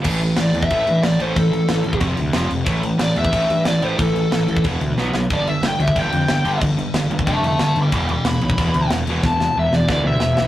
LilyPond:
<<
  \new Staff \with { instrumentName = "Lead electric guitar" } { \time 4/4 \key a \minor \tempo 4 = 183 r4 d''8 e''4. d''8 c''8 | a'2 r2 | r4 d''8 e''4. d''8 c''8 | a'2 r2 |
d''8 e''8 g''8 e''8 g''2 | r2 <e'' a''>8 <e'' a''>8 <e'' a''>8 <b'' d'''>8 | <b'' d'''>8 <b'' d'''>8 b''2 r4 | a''4 e''8 d''8 d''8 e''4. | }
  \new Staff \with { instrumentName = "Overdriven electric guitar" } { \clef bass \time 4/4 \key a \minor <a, e a>8 <a, e>8 <a, e>8 <a, e>8 <a, e a>8 <a, e>8 <a, e>8 <a, e a>8 | <a, e>8 <a, e>8 <a, e>8 <a, e>8 <f, c f>8 <f, c>8 <f, c f>8 <f, c>8 | <a, e a>8 <a, e>8 <a, e>8 <a, e>8 <a, e a>8 <a, e>8 <a, e>8 <a, e a>8 | <a, e>8 <a, e>8 <a, e>8 <a, e>8 <e, b, e>8 <e, b,>8 <b, fis b>8 <b, fis>8 |
<g, d g>8 <g, d>8 <g, d>8 <g, d>8 <g, d g>8 <g, d>8 <g, d>8 <g, d g>8 | <g, d>8 <g, d>8 <g, d>8 <g, d>8 <g, d g>8 <g, d>8 <g, d>8 <g, d>8 | <e, b, e>8 <e, b,>8 <e, b,>8 <e, b,>8 <e, b, e>8 <e, b,>8 <e, b,>8 <e, b, e>8 | <e, b,>8 <e, b,>8 <e, b,>8 <e, b,>8 <e, b, e>8 <e, b,>8 <e, b,>8 <e, b,>8 | }
  \new Staff \with { instrumentName = "Picked electric bass" } { \clef bass \time 4/4 \key a \minor a,,4 a,,8 e,8 a,,8 g,8 a,,8 a,,8 | a,,4 a,,8 a,,8 f,,8 d,8 f,,8 f,,8 | a,,4 a,,8 e,8 a,,8 g,8 a,,8 a,,8 | a,,4 a,,8 a,,8 e,,8 d,8 b,,8 b,,8 |
g,,4 g,,8 d,8 g,,8 f,8 g,,8 g,,8 | g,,4 g,,8 g,,8 f,,8 f,,8 g,,8 g,,8 | e,,4 e,,8 b,,8 e,,8 d,8 e,,8 e,,8 | e,,4 e,,8 e,,8 d,8 d,8 e,,8 b,,8 | }
  \new DrumStaff \with { instrumentName = "Drums" } \drummode { \time 4/4 <cymc bd>8 cymc8 <cymc sn>8 cymc16 bd16 <cymc bd>8 cymc8 <cymc sn>8 cymc8 | <cymc bd>8 cymc8 <cymc sn>8 cymc16 bd16 <cymc bd>8 cymc8 <cymc sn>8 cymc8 | <cymc bd>8 cymc8 <cymc sn>8 cymc16 bd16 <cymc bd>8 cymc8 <cymc sn>8 cymc8 | <cymc bd>8 cymc8 <cymc sn>8 cymc16 bd16 <cymc bd>8 cymc8 sn8 sn8 |
<cymc bd>8 cymc8 <cymc sn>8 cymc16 bd16 <cymc bd>8 cymc8 <cymc sn>8 cymc8 | <cymc bd>8 cymc8 <cymc sn>8 cymc16 bd16 <cymc bd>8 cymc8 <cymc sn>8 cymc8 | <cymc bd>8 cymc8 <cymc sn>8 cymc16 bd16 <cymc bd>8 cymc8 <cymc sn>8 cymc8 | <bd sn>8 sn8 r8 sn8 <bd sn>4 sn8 sn8 | }
>>